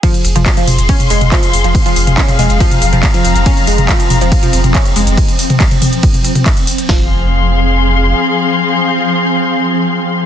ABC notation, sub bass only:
X:1
M:4/4
L:1/16
Q:1/4=140
K:Fm
V:1 name="Sub bass" clef=bass
z2 F,,, F,,, z2 F,,, F,,, z2 F,,, F,,, z2 F,,, F,,, | z2 F,,, F,,, z2 F,,, F,,, z2 F,,, F,,, z2 F,,, F,,, | z2 F,,, F,,, z2 F,,, F,,, z2 F,,, F,,, z2 F,,, F,,, | z16 |
F,,,12 z4 | z16 |]